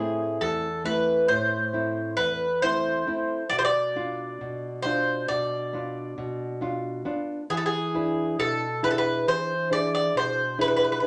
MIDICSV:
0, 0, Header, 1, 3, 480
1, 0, Start_track
1, 0, Key_signature, 0, "minor"
1, 0, Tempo, 884956
1, 1904, Time_signature, 9, 3, 24, 8
1, 6003, End_track
2, 0, Start_track
2, 0, Title_t, "Bouzouki"
2, 0, Program_c, 0, 25
2, 0, Note_on_c, 0, 68, 73
2, 200, Note_off_c, 0, 68, 0
2, 222, Note_on_c, 0, 69, 72
2, 461, Note_off_c, 0, 69, 0
2, 463, Note_on_c, 0, 71, 69
2, 686, Note_off_c, 0, 71, 0
2, 697, Note_on_c, 0, 72, 77
2, 1159, Note_off_c, 0, 72, 0
2, 1175, Note_on_c, 0, 71, 89
2, 1403, Note_off_c, 0, 71, 0
2, 1423, Note_on_c, 0, 72, 85
2, 1893, Note_off_c, 0, 72, 0
2, 1896, Note_on_c, 0, 74, 95
2, 1936, Note_off_c, 0, 74, 0
2, 1945, Note_on_c, 0, 72, 81
2, 1976, Note_off_c, 0, 72, 0
2, 1978, Note_on_c, 0, 74, 94
2, 2601, Note_off_c, 0, 74, 0
2, 2617, Note_on_c, 0, 72, 82
2, 2864, Note_off_c, 0, 72, 0
2, 2866, Note_on_c, 0, 74, 79
2, 3804, Note_off_c, 0, 74, 0
2, 4069, Note_on_c, 0, 68, 76
2, 4103, Note_off_c, 0, 68, 0
2, 4107, Note_on_c, 0, 69, 67
2, 4145, Note_off_c, 0, 69, 0
2, 4153, Note_on_c, 0, 68, 72
2, 4528, Note_off_c, 0, 68, 0
2, 4554, Note_on_c, 0, 69, 86
2, 4772, Note_off_c, 0, 69, 0
2, 4794, Note_on_c, 0, 71, 76
2, 4828, Note_off_c, 0, 71, 0
2, 4830, Note_on_c, 0, 69, 67
2, 4866, Note_off_c, 0, 69, 0
2, 4871, Note_on_c, 0, 71, 75
2, 5033, Note_off_c, 0, 71, 0
2, 5035, Note_on_c, 0, 72, 83
2, 5253, Note_off_c, 0, 72, 0
2, 5276, Note_on_c, 0, 74, 84
2, 5382, Note_off_c, 0, 74, 0
2, 5395, Note_on_c, 0, 74, 79
2, 5512, Note_off_c, 0, 74, 0
2, 5518, Note_on_c, 0, 72, 84
2, 5733, Note_off_c, 0, 72, 0
2, 5756, Note_on_c, 0, 71, 86
2, 5786, Note_off_c, 0, 71, 0
2, 5792, Note_on_c, 0, 71, 58
2, 5831, Note_off_c, 0, 71, 0
2, 5839, Note_on_c, 0, 71, 62
2, 5875, Note_off_c, 0, 71, 0
2, 5881, Note_on_c, 0, 71, 53
2, 5918, Note_off_c, 0, 71, 0
2, 5923, Note_on_c, 0, 71, 58
2, 5959, Note_off_c, 0, 71, 0
2, 5967, Note_on_c, 0, 71, 48
2, 6001, Note_off_c, 0, 71, 0
2, 6003, End_track
3, 0, Start_track
3, 0, Title_t, "Nylon-string guitar"
3, 0, Program_c, 1, 24
3, 0, Note_on_c, 1, 45, 61
3, 0, Note_on_c, 1, 57, 43
3, 0, Note_on_c, 1, 60, 39
3, 0, Note_on_c, 1, 64, 47
3, 206, Note_off_c, 1, 45, 0
3, 220, Note_on_c, 1, 40, 54
3, 363, Note_off_c, 1, 57, 0
3, 364, Note_off_c, 1, 60, 0
3, 364, Note_off_c, 1, 64, 0
3, 458, Note_on_c, 1, 57, 46
3, 462, Note_on_c, 1, 60, 41
3, 464, Note_on_c, 1, 64, 49
3, 687, Note_off_c, 1, 40, 0
3, 703, Note_on_c, 1, 45, 66
3, 845, Note_off_c, 1, 57, 0
3, 847, Note_off_c, 1, 60, 0
3, 848, Note_off_c, 1, 64, 0
3, 939, Note_on_c, 1, 57, 45
3, 942, Note_on_c, 1, 60, 42
3, 944, Note_on_c, 1, 64, 50
3, 1169, Note_off_c, 1, 45, 0
3, 1183, Note_on_c, 1, 40, 63
3, 1325, Note_off_c, 1, 57, 0
3, 1327, Note_off_c, 1, 60, 0
3, 1328, Note_off_c, 1, 64, 0
3, 1425, Note_on_c, 1, 57, 44
3, 1427, Note_on_c, 1, 60, 41
3, 1429, Note_on_c, 1, 64, 49
3, 1649, Note_off_c, 1, 40, 0
3, 1657, Note_off_c, 1, 57, 0
3, 1659, Note_off_c, 1, 60, 0
3, 1662, Note_off_c, 1, 64, 0
3, 1663, Note_on_c, 1, 57, 44
3, 1666, Note_on_c, 1, 60, 39
3, 1669, Note_on_c, 1, 64, 51
3, 1856, Note_off_c, 1, 57, 0
3, 1857, Note_off_c, 1, 60, 0
3, 1859, Note_off_c, 1, 64, 0
3, 1904, Note_on_c, 1, 47, 59
3, 2146, Note_on_c, 1, 59, 44
3, 2149, Note_on_c, 1, 62, 42
3, 2151, Note_on_c, 1, 65, 51
3, 2371, Note_off_c, 1, 47, 0
3, 2392, Note_on_c, 1, 47, 62
3, 2530, Note_off_c, 1, 59, 0
3, 2532, Note_off_c, 1, 62, 0
3, 2533, Note_off_c, 1, 65, 0
3, 2631, Note_on_c, 1, 62, 45
3, 2634, Note_on_c, 1, 65, 54
3, 2854, Note_off_c, 1, 47, 0
3, 2873, Note_on_c, 1, 47, 64
3, 3013, Note_off_c, 1, 62, 0
3, 3015, Note_off_c, 1, 65, 0
3, 3110, Note_on_c, 1, 59, 47
3, 3113, Note_on_c, 1, 62, 43
3, 3116, Note_on_c, 1, 65, 51
3, 3335, Note_off_c, 1, 47, 0
3, 3351, Note_on_c, 1, 47, 65
3, 3492, Note_off_c, 1, 59, 0
3, 3494, Note_off_c, 1, 62, 0
3, 3496, Note_off_c, 1, 65, 0
3, 3585, Note_on_c, 1, 59, 44
3, 3589, Note_on_c, 1, 62, 38
3, 3591, Note_on_c, 1, 65, 50
3, 3814, Note_off_c, 1, 47, 0
3, 3819, Note_off_c, 1, 59, 0
3, 3820, Note_off_c, 1, 62, 0
3, 3822, Note_off_c, 1, 65, 0
3, 3825, Note_on_c, 1, 59, 48
3, 3828, Note_on_c, 1, 62, 42
3, 3828, Note_on_c, 1, 65, 52
3, 4018, Note_off_c, 1, 59, 0
3, 4018, Note_off_c, 1, 62, 0
3, 4019, Note_off_c, 1, 65, 0
3, 4068, Note_on_c, 1, 52, 65
3, 4308, Note_on_c, 1, 62, 42
3, 4310, Note_on_c, 1, 64, 44
3, 4315, Note_on_c, 1, 71, 47
3, 4532, Note_off_c, 1, 52, 0
3, 4549, Note_on_c, 1, 47, 59
3, 4690, Note_off_c, 1, 62, 0
3, 4692, Note_off_c, 1, 64, 0
3, 4693, Note_off_c, 1, 71, 0
3, 4787, Note_on_c, 1, 62, 46
3, 4790, Note_on_c, 1, 64, 46
3, 4790, Note_on_c, 1, 68, 52
3, 5012, Note_off_c, 1, 47, 0
3, 5031, Note_on_c, 1, 52, 64
3, 5170, Note_off_c, 1, 62, 0
3, 5170, Note_off_c, 1, 64, 0
3, 5171, Note_off_c, 1, 68, 0
3, 5266, Note_on_c, 1, 62, 50
3, 5270, Note_on_c, 1, 68, 51
3, 5271, Note_on_c, 1, 64, 45
3, 5492, Note_off_c, 1, 52, 0
3, 5508, Note_on_c, 1, 47, 61
3, 5648, Note_off_c, 1, 62, 0
3, 5650, Note_off_c, 1, 64, 0
3, 5651, Note_off_c, 1, 68, 0
3, 5739, Note_on_c, 1, 62, 45
3, 5743, Note_on_c, 1, 64, 43
3, 5743, Note_on_c, 1, 68, 47
3, 5969, Note_off_c, 1, 47, 0
3, 5972, Note_off_c, 1, 62, 0
3, 5974, Note_off_c, 1, 64, 0
3, 5977, Note_off_c, 1, 68, 0
3, 5979, Note_on_c, 1, 62, 44
3, 5982, Note_on_c, 1, 64, 42
3, 5983, Note_on_c, 1, 68, 49
3, 6003, Note_off_c, 1, 62, 0
3, 6003, Note_off_c, 1, 64, 0
3, 6003, Note_off_c, 1, 68, 0
3, 6003, End_track
0, 0, End_of_file